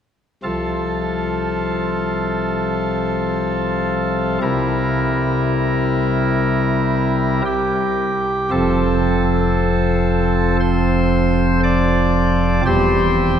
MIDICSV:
0, 0, Header, 1, 2, 480
1, 0, Start_track
1, 0, Key_signature, -1, "major"
1, 0, Tempo, 1022147
1, 204, Time_signature, 4, 2, 24, 8
1, 683, Tempo, 993377
1, 3083, Tempo, 1047120
1, 5003, Tempo, 1022147
1, 6311, End_track
2, 0, Start_track
2, 0, Title_t, "Pipe organ"
2, 0, Program_c, 0, 19
2, 203, Note_on_c, 0, 36, 53
2, 203, Note_on_c, 0, 69, 43
2, 204, Note_on_c, 0, 48, 47
2, 204, Note_on_c, 0, 65, 41
2, 206, Note_on_c, 0, 53, 43
2, 2097, Note_off_c, 0, 36, 0
2, 2098, Note_off_c, 0, 48, 0
2, 2098, Note_off_c, 0, 65, 0
2, 2098, Note_off_c, 0, 69, 0
2, 2099, Note_off_c, 0, 53, 0
2, 2115, Note_on_c, 0, 55, 52
2, 2116, Note_on_c, 0, 48, 69
2, 2116, Note_on_c, 0, 64, 53
2, 2117, Note_on_c, 0, 70, 55
2, 2118, Note_on_c, 0, 36, 59
2, 3539, Note_off_c, 0, 55, 0
2, 3539, Note_off_c, 0, 64, 0
2, 3540, Note_off_c, 0, 36, 0
2, 3540, Note_off_c, 0, 48, 0
2, 3540, Note_off_c, 0, 70, 0
2, 3558, Note_on_c, 0, 67, 82
2, 4032, Note_off_c, 0, 67, 0
2, 4038, Note_on_c, 0, 53, 38
2, 4039, Note_on_c, 0, 29, 48
2, 4039, Note_on_c, 0, 41, 47
2, 4040, Note_on_c, 0, 60, 39
2, 4041, Note_on_c, 0, 69, 77
2, 4981, Note_off_c, 0, 69, 0
2, 4999, Note_on_c, 0, 72, 86
2, 5468, Note_off_c, 0, 72, 0
2, 5484, Note_on_c, 0, 74, 81
2, 5941, Note_off_c, 0, 29, 0
2, 5941, Note_off_c, 0, 41, 0
2, 5941, Note_off_c, 0, 53, 0
2, 5942, Note_off_c, 0, 60, 0
2, 5950, Note_off_c, 0, 74, 0
2, 5966, Note_on_c, 0, 40, 49
2, 5966, Note_on_c, 0, 67, 42
2, 5967, Note_on_c, 0, 28, 49
2, 5967, Note_on_c, 0, 55, 41
2, 5967, Note_on_c, 0, 72, 88
2, 5968, Note_on_c, 0, 60, 42
2, 6311, Note_off_c, 0, 28, 0
2, 6311, Note_off_c, 0, 40, 0
2, 6311, Note_off_c, 0, 55, 0
2, 6311, Note_off_c, 0, 60, 0
2, 6311, Note_off_c, 0, 67, 0
2, 6311, Note_off_c, 0, 72, 0
2, 6311, End_track
0, 0, End_of_file